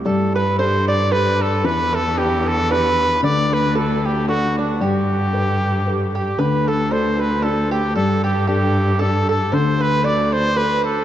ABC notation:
X:1
M:3/4
L:1/8
Q:"Swing" 1/4=114
K:G
V:1 name="Five-string banjo"
A B c d B A | B A G A B2 | d B A G F D | G4- G G |
B A c B A G | A G G2 A A | c B d c B A |]
V:2 name="Trumpet"
A B c d B A | B A G A B2 | d B A G F D | G4- G G |
B A c B A G | A G G2 A A | c B d c B A |]
V:3 name="Upright piano"
G,2 [DGA]2 [DGA]2 | E,2 [DEG]2 [DEG]2 | D,2 [DFA]2 [DFA]2 | G,2 [GAB]2 [GAB]2 |
D,2 [DFA]2 [DFA]2 | G,2 [DGA]2 [DGA]2 | D,2 [DFA]2 [DFA]2 |]
V:4 name="Cello" clef=bass
G,,6 | E,,6 | D,,6 | G,,6 |
D,,6 | G,,6 | D,,6 |]